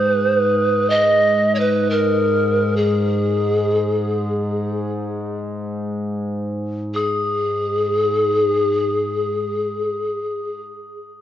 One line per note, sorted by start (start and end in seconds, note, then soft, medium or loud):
0.00 6.94 G#2 medium
0.00 0.11 C5 medium
0.00 6.84 D#6 medium
0.11 0.26 B4 medium
0.26 0.39 C5 medium
0.39 0.91 B4 medium
0.90 1.56 D#5 medium
1.55 1.61 C#5 medium
1.60 1.92 B4 medium
1.91 2.78 A#4 medium
2.77 4.90 G#4 medium
6.94 10.62 G#2 medium
6.94 10.61 G#4 medium
6.94 10.63 D#6 soft